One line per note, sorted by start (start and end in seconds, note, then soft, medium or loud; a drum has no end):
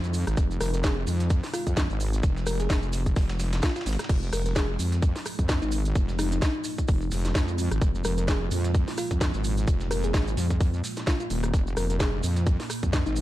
0.00 0.25 F2 loud
0.00 13.21 G#3 medium
0.00 4.05 C4 medium
0.00 4.08 D#4 medium
0.00 closed hi-hat soft
0.00 maracas soft
0.14 closed hi-hat medium
0.14 open hi-hat loud
0.14 maracas medium
0.27 0.36 G#1 loud
0.27 cross-stick medium
0.27 closed hi-hat medium
0.27 maracas soft
0.37 0.59 F1 medium
0.37 kick loud
0.37 closed hi-hat medium
0.37 maracas medium
0.51 maracas soft
0.60 1.05 F1 loud
0.60 0.69 A#4 medium
0.60 cross-stick medium
0.60 closed hi-hat medium
0.60 open hi-hat loud
0.60 maracas loud
0.74 0.80 A#4 medium
0.74 closed hi-hat soft
0.74 closed hi-hat medium
0.74 maracas soft
0.84 1.00 G#4 medium
0.84 kick loud
0.84 snare loud
0.84 closed hi-hat medium
0.84 maracas medium
1.07 1.41 F2 loud
1.07 closed hi-hat medium
1.07 open hi-hat loud
1.07 maracas medium
1.20 snare medium
1.20 closed hi-hat medium
1.20 maracas soft
1.30 kick loud
1.30 closed hi-hat medium
1.30 maracas medium
1.43 snare medium
1.43 snare soft
1.43 open hi-hat medium
1.43 maracas soft
1.53 1.70 F4 loud
1.53 cross-stick medium
1.53 closed hi-hat medium
1.53 open hi-hat loud
1.53 maracas medium
1.67 1.88 F2 loud
1.67 kick medium
1.67 closed hi-hat soft
1.67 closed hi-hat medium
1.67 maracas soft
1.77 kick loud
1.77 snare loud
1.77 closed hi-hat medium
1.77 maracas medium
1.90 2.22 G#1 medium
1.90 closed hi-hat soft
1.90 maracas soft
2.00 closed hi-hat medium
2.00 open hi-hat loud
2.00 maracas medium
2.13 closed hi-hat medium
2.13 maracas soft
2.23 2.68 F1 medium
2.23 kick loud
2.23 closed hi-hat medium
2.23 maracas soft
2.36 snare medium
2.36 maracas soft
2.46 2.57 A#4 medium
2.46 cross-stick medium
2.46 closed hi-hat medium
2.46 open hi-hat loud
2.46 maracas medium
2.60 2.93 G#4 medium
2.60 snare soft
2.60 closed hi-hat medium
2.60 maracas soft
2.70 3.15 F1 loud
2.70 kick loud
2.70 snare loud
2.70 closed hi-hat medium
2.70 maracas soft
2.83 maracas soft
2.93 open hi-hat loud
2.93 open hi-hat medium
2.93 maracas loud
3.06 kick medium
3.06 closed hi-hat medium
3.06 maracas soft
3.16 3.61 F1 loud
3.16 kick loud
3.16 snare loud
3.16 closed hi-hat medium
3.16 open hi-hat medium
3.16 maracas medium
3.29 snare loud
3.29 closed hi-hat medium
3.29 maracas soft
3.39 snare loud
3.39 closed hi-hat medium
3.39 open hi-hat loud
3.39 maracas medium
3.53 snare loud
3.53 snare soft
3.53 closed hi-hat medium
3.53 maracas soft
3.62 3.71 F4 medium
3.62 kick loud
3.62 snare medium
3.62 snare loud
3.62 closed hi-hat medium
3.62 maracas medium
3.69 snare medium
3.69 closed hi-hat medium
3.76 3.82 F4 medium
3.76 snare medium
3.76 closed hi-hat medium
3.76 maracas soft
3.81 snare medium
3.81 closed hi-hat medium
3.86 3.97 G#1 medium
3.86 snare medium
3.86 closed hi-hat medium
3.86 open hi-hat loud
3.86 maracas medium
3.93 snare medium
3.93 closed hi-hat medium
3.99 cross-stick medium
3.99 snare medium
3.99 closed hi-hat medium
3.99 maracas soft
4.04 snare medium
4.04 closed hi-hat medium
4.09 4.31 F1 medium
4.09 13.21 A#3 medium
4.09 11.52 F4 medium
4.09 kick loud
4.09 closed hi-hat medium
4.09 crash medium
4.09 maracas medium
4.22 maracas soft
4.33 4.78 F1 loud
4.33 4.41 A#4 medium
4.33 cross-stick medium
4.33 closed hi-hat medium
4.33 open hi-hat loud
4.33 maracas medium
4.45 4.52 A#4 medium
4.45 closed hi-hat soft
4.45 closed hi-hat medium
4.45 maracas soft
4.56 4.72 G#4 medium
4.56 kick loud
4.56 snare loud
4.56 closed hi-hat medium
4.56 maracas medium
4.79 5.13 F2 loud
4.79 closed hi-hat medium
4.79 open hi-hat loud
4.79 maracas loud
4.92 snare medium
4.92 closed hi-hat medium
4.92 maracas soft
5.02 kick loud
5.02 closed hi-hat medium
5.02 maracas medium
5.16 snare medium
5.16 snare soft
5.16 open hi-hat medium
5.16 maracas soft
5.26 cross-stick medium
5.26 closed hi-hat medium
5.26 open hi-hat loud
5.26 maracas loud
5.39 5.60 F2 loud
5.39 kick medium
5.39 closed hi-hat soft
5.39 closed hi-hat medium
5.39 maracas soft
5.49 kick loud
5.49 snare loud
5.49 closed hi-hat medium
5.49 maracas medium
5.62 5.94 G#1 medium
5.62 5.77 D#4 medium
5.62 closed hi-hat soft
5.62 maracas soft
5.72 closed hi-hat medium
5.72 open hi-hat loud
5.72 maracas medium
5.85 closed hi-hat medium
5.85 maracas soft
5.95 6.40 F1 medium
5.95 kick loud
5.95 closed hi-hat medium
5.95 maracas soft
6.09 snare medium
6.09 maracas soft
6.19 6.27 D#4 medium
6.19 cross-stick medium
6.19 closed hi-hat medium
6.19 open hi-hat loud
6.19 maracas medium
6.32 6.38 D#4 medium
6.32 snare soft
6.32 closed hi-hat medium
6.32 maracas soft
6.42 7.08 D#4 medium
6.42 kick loud
6.42 snare loud
6.42 closed hi-hat medium
6.42 maracas medium
6.64 open hi-hat medium
6.64 open hi-hat loud
6.64 maracas loud
6.78 kick medium
6.78 closed hi-hat medium
6.78 maracas soft
6.88 7.10 F1 loud
6.88 kick loud
6.88 closed hi-hat medium
6.88 open hi-hat medium
6.88 maracas medium
7.01 maracas soft
7.11 7.33 F1 medium
7.11 snare medium
7.11 closed hi-hat medium
7.11 open hi-hat loud
7.11 maracas medium
7.25 snare soft
7.25 closed hi-hat medium
7.25 maracas soft
7.35 7.69 F2 loud
7.35 kick loud
7.35 snare loud
7.35 closed hi-hat medium
7.35 maracas medium
7.48 closed hi-hat soft
7.48 maracas soft
7.58 closed hi-hat medium
7.58 open hi-hat loud
7.58 maracas medium
7.71 7.80 G#1 medium
7.71 cross-stick medium
7.71 closed hi-hat medium
7.71 maracas soft
7.81 8.03 F1 medium
7.81 kick loud
7.81 closed hi-hat medium
7.81 maracas medium
7.95 maracas soft
8.04 8.50 F1 loud
8.04 8.13 A#4 medium
8.04 cross-stick medium
8.04 closed hi-hat medium
8.04 open hi-hat loud
8.04 maracas medium
8.18 8.24 A#4 medium
8.18 closed hi-hat soft
8.18 closed hi-hat medium
8.18 maracas soft
8.28 8.45 G#4 loud
8.28 kick loud
8.28 snare loud
8.28 closed hi-hat medium
8.28 maracas medium
8.51 8.86 F2 loud
8.51 closed hi-hat medium
8.51 open hi-hat loud
8.51 maracas loud
8.64 snare medium
8.64 closed hi-hat medium
8.64 maracas soft
8.74 kick loud
8.74 closed hi-hat medium
8.74 maracas medium
8.88 snare medium
8.88 snare soft
8.88 open hi-hat medium
8.88 maracas soft
8.97 9.14 F4 loud
8.97 cross-stick medium
8.97 closed hi-hat medium
8.97 open hi-hat loud
8.97 maracas loud
9.11 9.32 F2 loud
9.11 kick medium
9.11 closed hi-hat soft
9.11 closed hi-hat medium
9.11 maracas soft
9.21 kick loud
9.21 snare loud
9.21 closed hi-hat medium
9.21 maracas medium
9.34 9.66 G#1 medium
9.34 closed hi-hat soft
9.34 maracas soft
9.44 closed hi-hat medium
9.44 open hi-hat loud
9.44 maracas loud
9.57 closed hi-hat medium
9.57 maracas soft
9.67 10.12 F1 medium
9.67 kick loud
9.67 closed hi-hat medium
9.67 closed hi-hat soft
9.67 maracas medium
9.80 snare medium
9.80 maracas soft
9.91 10.01 A#4 medium
9.91 cross-stick medium
9.91 closed hi-hat medium
9.91 open hi-hat loud
9.91 maracas loud
10.03 10.37 G#4 medium
10.03 snare soft
10.03 closed hi-hat medium
10.03 maracas soft
10.14 10.36 G#1 medium
10.14 kick loud
10.14 snare loud
10.14 closed hi-hat medium
10.14 maracas medium
10.27 maracas soft
10.37 10.82 F2 loud
10.37 open hi-hat medium
10.37 open hi-hat loud
10.37 maracas medium
10.50 kick medium
10.50 closed hi-hat medium
10.50 maracas soft
10.60 kick loud
10.60 closed hi-hat medium
10.60 open hi-hat medium
10.60 maracas medium
10.73 maracas soft
10.84 snare medium
10.84 closed hi-hat medium
10.84 open hi-hat loud
10.84 maracas loud
10.97 snare soft
10.97 closed hi-hat medium
10.97 maracas soft
11.07 11.15 F4 medium
11.07 kick loud
11.07 snare loud
11.07 closed hi-hat medium
11.07 maracas medium
11.20 11.27 F4 medium
11.20 closed hi-hat soft
11.20 maracas soft
11.30 11.52 D#1 loud
11.30 closed hi-hat medium
11.30 open hi-hat loud
11.30 maracas medium
11.43 cross-stick medium
11.43 closed hi-hat medium
11.43 maracas soft
11.54 11.75 F1 medium
11.54 13.21 A#4 medium
11.54 kick loud
11.54 closed hi-hat medium
11.54 closed hi-hat soft
11.54 maracas medium
11.67 maracas soft
11.77 12.22 F1 loud
11.77 11.85 A#4 medium
11.77 cross-stick medium
11.77 closed hi-hat medium
11.77 open hi-hat loud
11.77 maracas medium
11.90 11.96 A#4 medium
11.90 closed hi-hat soft
11.90 closed hi-hat medium
11.90 maracas soft
12.00 12.17 G#4 medium
12.00 kick loud
12.00 snare loud
12.00 closed hi-hat medium
12.00 maracas medium
12.23 12.58 F2 loud
12.23 closed hi-hat medium
12.23 open hi-hat loud
12.23 maracas loud
12.36 snare medium
12.36 closed hi-hat medium
12.36 maracas soft
12.46 kick loud
12.46 closed hi-hat medium
12.46 maracas soft
12.60 snare medium
12.60 snare soft
12.60 open hi-hat medium
12.60 maracas soft
12.70 cross-stick medium
12.70 closed hi-hat medium
12.70 open hi-hat loud
12.70 maracas medium
12.83 13.04 F2 medium
12.83 kick medium
12.83 closed hi-hat soft
12.83 closed hi-hat medium
12.83 maracas soft
12.93 kick loud
12.93 snare loud
12.93 closed hi-hat medium
12.93 maracas soft
13.06 13.21 G#1 medium
13.06 13.21 D#4 medium
13.06 closed hi-hat soft
13.06 maracas soft
13.16 closed hi-hat medium
13.16 open hi-hat loud
13.16 maracas medium